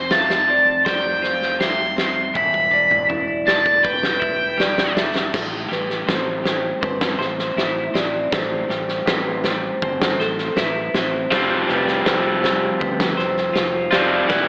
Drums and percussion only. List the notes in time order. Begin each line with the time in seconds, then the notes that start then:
0.11 snare
0.30 snare
0.86 kick, snare
1.24 snare
1.42 snare
1.61 snare
1.98 snare
2.35 kick, high tom
2.54 kick
2.91 high tom
3.10 mid tom
3.48 snare
3.66 kick
3.85 kick
4.03 snare
4.22 kick
4.60 snare
4.78 snare
4.97 snare
5.16 snare
5.34 kick, snare, crash
5.72 snare
5.90 snare
6.09 snare
6.45 snare
6.83 kick
7.01 snare
7.21 snare
7.39 snare
7.58 snare
7.95 snare
8.32 kick, snare
8.70 snare
8.89 snare
9.07 snare
9.44 snare
9.82 kick
10.02 snare
10.20 snare
10.39 snare
10.57 snare
10.94 snare
11.32 kick, snare
11.69 snare
11.88 snare
12.06 snare
12.44 snare
12.81 kick
13.00 snare
13.19 snare
13.37 snare
13.56 snare
13.92 snare
14.30 kick, snare